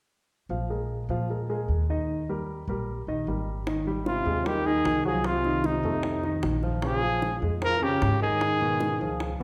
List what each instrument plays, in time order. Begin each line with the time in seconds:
0.49 upright bass A#1, grand piano F3 F4 F5
0.70 grand piano G#3 G#4 A#4
1.09 upright bass A#2, grand piano F3 F4 F5
1.30 grand piano G#3 G#4 A#4
1.49 grand piano G#3 G#4 A#4
1.68 upright bass D#2
1.90 grand piano D#3 D#4 D#5
2.29 grand piano G3 G4 A#4
2.68 upright bass A#1, grand piano G3 G4 A#4
3.07 upright bass A#1, grand piano D#3 D#4 D#5
3.27 upright bass G#1, grand piano G3 G4 A#4
3.67 grand piano D#3 D#4, high bongo
3.87 grand piano G3 G4
4.05 trombone C3, trumpet F4, high bongo
4.25 upright bass D#2, grand piano G#3 G#4
4.45 trombone D#3, grand piano G3 G4, trumpet G4, high bongo
4.64 trombone D#3, grand piano D#3 D#4, trumpet G#4
4.85 upright bass C2, high bongo, low bongo
5.05 trombone F3, grand piano F#3 F#4, trumpet G#4
5.24 trombone C3, trumpet F4, high bongo
5.44 grand piano D#3 D#4, high bongo
5.64 trombone C3, trumpet D#4, high bongo
5.83 upright bass F2, grand piano A3 A4
6.03 high bongo
6.24 grand piano D#3 D#4, high bongo
6.43 upright bass A#1, high bongo, low bongo
6.63 grand piano F3 F4, high bongo
6.82 grand piano C#3 C#4, trombone F3, trumpet G#4, high bongo
7.03 grand piano F3 F4
7.22 high bongo
7.42 upright bass F2, grand piano G#3 G#4
7.62 trombone F3, grand piano F3 F4, trumpet A#4, high bongo
7.82 grand piano C#3 C#4, trombone C#3, trumpet G4
8.02 upright bass G#2, high bongo, low bongo
8.21 trombone D#3, grand piano D#3 D#4, trumpet G#4
8.41 high bongo
8.61 grand piano B2 B3, high bongo
8.80 high bongo
9.01 upright bass C#2, grand piano F3 F4
9.20 high bongo